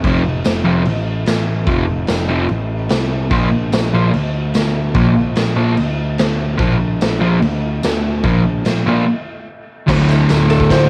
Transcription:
0.04 picked electric bass F1, distorted electric guitar F2 C3 F3, kick, crash
0.44 picked electric bass F1, snare, tambourine, crash
0.65 distorted electric guitar F2 C3 F3
0.85 picked electric bass A1, crash
1.26 picked electric bass A1, snare, tambourine, crash
1.67 picked electric bass F1, distorted electric guitar F2 C3 F3, kick, crash
2.07 picked electric bass F1, snare, tambourine, crash
2.28 distorted electric guitar F2 C3 F3
2.49 picked electric bass A1, crash
2.89 picked electric bass C2, snare, tambourine, crash
3.31 picked electric bass A#1, distorted electric guitar A#2 F3 A#3, kick, crash
3.72 picked electric bass A#1, snare, tambourine, crash
3.93 distorted electric guitar A#2 F3 A#3
4.13 picked electric bass D2, crash
4.54 picked electric bass D2, snare, tambourine, crash
4.94 picked electric bass A#1, distorted electric guitar A#2 F3 A#3, kick, crash
5.35 picked electric bass A#1, snare, tambourine, crash
5.56 distorted electric guitar A#2 F3 A#3
5.77 picked electric bass D2, crash
6.18 picked electric bass D2, snare, tambourine, crash
6.58 picked electric bass A#1, distorted electric guitar A#2 F3 A#3, kick, crash
7.01 picked electric bass A#1, snare, tambourine, crash
7.21 distorted electric guitar A#2 F3 A#3
7.42 picked electric bass D2, crash
7.83 picked electric bass D2, snare, tambourine, crash
8.23 picked electric bass A#1, distorted electric guitar A#2 F3 A#3, kick, crash
8.65 picked electric bass A#1, snare, tambourine, crash
8.86 distorted electric guitar A#2 F3 A#3
9.87 picked electric bass D1, distorted electric guitar D2 A2 D3, kick, snare, crash, tambourine
10.09 ride, tambourine
10.29 picked electric bass D1, snare, ride, tambourine
10.50 electric slide guitar A4, ride, tambourine
10.60 kick
10.70 picked electric bass D1, electric slide guitar C5, kick, snare, ride, tambourine

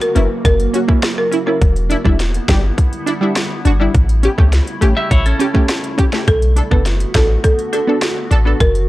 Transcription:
Already playing: ambient pad C#3 F#3 A#3 F#4, downlifter
0.01 marimba A#4, closed hi-hat
0.15 808-style bass F#1, synth stab A#3 C#4 E4, marimba B4, closed hi-hat
0.45 808-style bass F#1, marimba A#4, kick, closed hi-hat
0.60 closed hi-hat
0.73 synth stab C#4 F#4, closed hi-hat
0.88 synth stab A#3 C#4 E4, kick
1.03 cross-stick, snare, closed hi-hat
1.18 marimba A#4
1.31 synth stab C#4 E4, closed hi-hat
1.46 synth stab A#3 C#4 E4, marimba A#4
1.61 808-style bass E1, ambient pad D3 G3 B3 E4, kick, closed hi-hat
1.76 closed hi-hat
1.90 synth stab D4 E4, closed hi-hat
2.04 808-style bass E1, synth stab G3 D4 E4, kick
2.20 snare, closed hi-hat
2.34 closed hi-hat
2.48 808-style bass G1, synth stab G3 D4 G4, kick, snare, closed hi-hat
2.78 kick, closed hi-hat
2.93 closed hi-hat
3.06 synth stab D4 E4, closed hi-hat
3.21 synth stab G3 D4 E4
3.36 cross-stick, snare, closed hi-hat
3.65 808-style bass G1, synth stab D4 F#4, closed hi-hat
3.80 synth stab G3 D4 E4
3.95 808-style bass A1, ambient pad C#3 A3 E4, kick, closed hi-hat
4.09 closed hi-hat
4.23 synth stab C#4 G4, closed hi-hat
4.38 808-style bass C#2, synth stab A3 C#4 G4, kick
4.53 snare, closed hi-hat
4.67 closed hi-hat
4.81 808-style bass A1, synth stab A3 C#4 G4, closed hi-hat
4.97 clean electric guitar G4 E5
5.11 808-style bass A1, clean electric guitar E4 C#5, kick, closed hi-hat
5.26 clean electric guitar C#4 A4, closed hi-hat
5.39 synth stab C#4 G4, closed hi-hat
5.54 synth stab A3 C#4 G4, kick
5.69 cross-stick, snare, closed hi-hat
5.84 closed hi-hat
5.98 synth stab C#4 G4, kick, closed hi-hat
6.12 synth stab A3 C#4 G4, snare
6.28 808-style bass B1, ambient pad D3 B3 F#4, marimba A4, kick, closed hi-hat
6.42 closed hi-hat
6.56 synth stab D4 A4, closed hi-hat
6.71 808-style bass F#1, synth stab B3 D4 A4, marimba B4, kick
6.86 snare, closed hi-hat
7.00 closed hi-hat
7.14 808-style bass A1, synth stab B3 D4 A4, marimba A4, kick, snare, closed hi-hat
7.44 marimba A4, kick, closed hi-hat
7.59 closed hi-hat
7.73 synth stab D4 A4, marimba A4, closed hi-hat
7.87 synth stab B3 D4 A4
8.02 cross-stick, snare, closed hi-hat
8.31 808-style bass A1, synth stab D4 A4, closed hi-hat
8.45 synth stab B3 D4 A4
8.60 808-style bass F#1, marimba A#4, kick, closed hi-hat
8.75 closed hi-hat

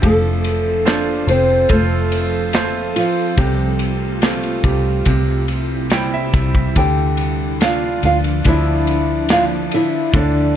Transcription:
0.02 fingered electric bass F1, grand piano F3, ambient pad F3 C4 A4, nylon-string guitar A3 A4, kick, ride
0.44 ride
0.85 nylon-string guitar D4 D5, grand piano F4 A4 C5, snare, ride
1.27 fingered electric bass F1, nylon-string guitar C4 C5, ride
1.69 fingered electric bass F1, nylon-string guitar A3 A4, grand piano F4 A4 C5, kick, ride
2.12 ride
2.53 grand piano F4 A4 C5, snare, ride
2.96 nylon-string guitar F3 F4, ride
3.37 fingered electric bass C2, grand piano C3, nylon-string guitar G3 G4, ambient pad A3 F4, kick, ride
3.79 ride
4.22 grand piano A3 C4 F4, snare, ride
4.43 ride
4.64 fingered electric bass C2, nylon-string guitar G3 G4, kick, ride
5.05 fingered electric bass C2, grand piano C3, ambient pad C3 G3 E4, kick, ride
5.48 ride
5.90 grand piano G3 C4 E4 G5, snare, ride
6.14 grand piano E5
6.33 fingered electric bass C2, kick, ride
6.55 kick
6.76 fingered electric bass D2, grand piano D3, ambient pad D3 F3 D4, nylon-string guitar G4 G5, kick, ride
7.17 ride
7.61 grand piano D4 F4, nylon-string guitar F4 F5, snare, ride
8.03 fingered electric bass D2, nylon-string guitar F4 F5, ride
8.24 ride
8.44 fingered electric bass D2, grand piano F3 D4 E4, nylon-string guitar E4 E5, kick, ride
8.87 ride
9.29 grand piano F3 D4, nylon-string guitar F5, snare, ride
9.33 nylon-string guitar F4
9.71 nylon-string guitar E4 E5, ride
10.13 fingered electric bass D2, grand piano D3, ambient pad G3 A#3 D4, nylon-string guitar D4 D5, kick, ride

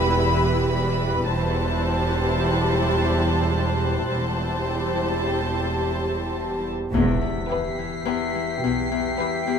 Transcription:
Already playing: double bass section E1, cello section E2, viola section G3 E4, ambient pad G4 B4 B5, violin section B4 B5 E6
1.28 double bass section E1, cello section E2, viola section G3 E4, ambient pad G4 C5 A5, violin section C5 A5 C6 F#6
4.10 double bass section E1, cello section E2, viola section G3 E4, ambient pad G4 C5 A5, violin section C5 A5
4.87 violin section G6
6.93 double bass section E1, cello section E2, harp E2, ambient pad G4 B4 G5, violin section B6, impact
7.21 harp E2
7.49 harp E3, viola section B3, violin section G4 B4 C7
7.78 harp E3
8.05 harp E2, viola section B3, violin section G4 B4
8.35 harp E3
8.63 double bass section B1, harp E2, cello section B2
8.92 harp E2
9.19 harp E3, viola section B3, violin section G4 B4
9.47 harp E2

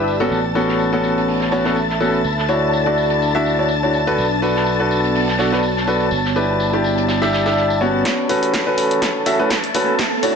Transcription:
Already playing: fingered electric bass G1, upright piano D4 E4 G4 B4, ambient pad G4 D5 A5, string section E5 E6
0.08 tambourine
0.20 upright piano B3 C#4 F#4 A4, closed hi-hat
0.31 fingered electric bass A1, ambient pad A4, string section A5 A6, tambourine
0.55 upright piano B3 C#4 F#4 A4, tambourine
0.68 ambient pad E5, snare
0.79 tambourine
0.93 upright piano B3 C#4 F#4 A4
1.04 tambourine
1.18 ambient pad B5, closed hi-hat
1.28 open hi-hat
1.41 snare
1.52 upright piano B3 C#4 F#4 C#5, tambourine
1.65 upright piano B3 C#4 F#4 A4, snare
1.76 tambourine
1.90 snare
2.00 upright piano B3 C#4 F#4 A4, tambourine
2.13 closed hi-hat
2.24 fingered electric bass D2, ambient pad D4, tambourine
2.38 snare
2.48 upright piano D4 E4 F#4 C#5, tambourine
2.73 tambourine
2.86 upright piano D4 E4 F#4 D5
2.98 tambourine
3.10 closed hi-hat
3.22 tambourine
3.35 upright piano D4 E4 F#4 E5
3.46 tambourine
3.59 upright piano D4 E4 F#4 C#5
3.69 tambourine
3.83 upright piano D4 E4 F#4 C#5
3.93 tambourine
4.07 upright piano D4 F#4 A4 B4, closed hi-hat
4.18 fingered electric bass B1, ambient pad B3, tambourine
4.41 upright piano D4 F#4 A4 B4, ambient pad F#4, tambourine
4.56 snare
4.66 tambourine
4.80 upright piano D4 F#4 A4 B4
4.91 tambourine
5.04 closed hi-hat
5.15 open hi-hat
5.28 snare
5.39 upright piano D4 F#4 A4 D5, snare, tambourine
5.52 upright piano D4 F#4 A4 B4, snare
5.63 tambourine
5.77 snare
5.87 upright piano D4 F#4 A4 B4, tambourine
6.00 closed hi-hat
6.11 fingered electric bass G1, ambient pad G4, tambourine
6.25 snare
6.36 upright piano D4 E4 G4 B4, tambourine
6.60 tambourine
6.73 upright piano D4 E4 G4 D5
6.84 tambourine
6.98 ambient pad A5, closed hi-hat
7.08 snare, tambourine
7.22 upright piano D4 E4 G4 E5, snare, tambourine
7.33 snare, tambourine
7.46 upright piano D4 E4 G4 E5, snare, tambourine
7.56 snare
7.70 tambourine
7.81 upright piano B3 C#4 F#4 C#5
8.05 ambient pad A4, string section A5 A6, kick, snare, closed hi-hat, riser
8.29 fingered electric bass A1, upright piano C#4 F#4 A4 B4, open hi-hat
8.43 closed hi-hat
8.54 kick, snare, closed hi-hat
8.59 ambient pad E5
8.67 fingered electric bass A1, upright piano C#4 F#4 A4 B4
8.73 ambient pad B5
8.78 open hi-hat
8.91 closed hi-hat
9.02 kick, snare, closed hi-hat
9.26 fingered electric bass A1, upright piano C#4 F#4 A4 E5, open hi-hat
9.39 fingered electric bass A2, upright piano C#4 F#4 A4 B4
9.50 kick, snare, closed hi-hat
9.64 closed hi-hat
9.75 fingered electric bass A1, upright piano C#4 F#4 A4 B4, open hi-hat
9.99 ambient pad D4, kick, snare, closed hi-hat
10.23 fingered electric bass D2, upright piano D4 E4 F#4 C#5, open hi-hat

